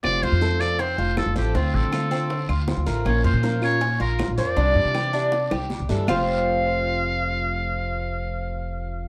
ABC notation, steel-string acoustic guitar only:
X:1
M:4/4
L:1/8
Q:1/4=158
K:F
V:1 name="Steel-string acoustic guitar"
[C,F,A,CF]2 [F,A,CF] [F,A,CF] z3 [F,A,CF] | [D,A,CF]2 [D,A,CF] [A,CF] z3 [A,CF] | [F,B,_DF]2 [F,B,DF] [B,DF] z3 [B,DF] | [C,E,G,DE]2 [E,G,DE] [E,G,DE] z3 [E,G,DE] |
[F,,C,F,A,CF]8- | [F,,C,F,A,CF]8 |]